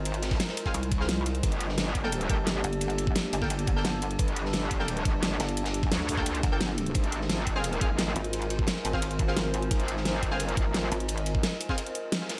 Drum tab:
RD |xxxxxxx-x-x---x-|x-x-x-x-x-x-x-x-|xxx-x-x-x-x-x-x-|x-x-x-x-x-x-x-x-|
HH |xxx-x-o-xxx-x-xx|xxx-x-x-xxx-x-xx|xxx-x-o-xxx-x-xx|xxx-x-x-xxx-x-xx|
SD |--oooo-o---oo---|---oo--o----o---|----oo-o---oo---|---oo--o----o-o-|
BD |---o---o--o-----|o-----o---o-----|---o---o--o-----|o-----o---o-----|

RD |xx-xx-x-x-x-x-x-|x-x-x-x-x-x-x-x-|xxx-x-x-x-x-x-x-|x-x-x-x-x-x-x-x-|
HH |xxx-x-o-xxx-x-xx|xxx-x-x-xxx-x-xx|xxx-x-o-xxx-x-xx|xxx-x-x-xxx-x-xx|
SD |-o--oo-o----o---|---oo--o----o---|----oo-o---oo---|---oo--o----o---|
BD |---o---o--o-----|o-----o---o-----|---o---o--o-----|o-----o---o-----|

RD |xxx-x-x-x---x-x-|
HH |xxx-x-o-xxx-x-x-|
SD |----oo-o----ooo-|
BD |---o---o--------|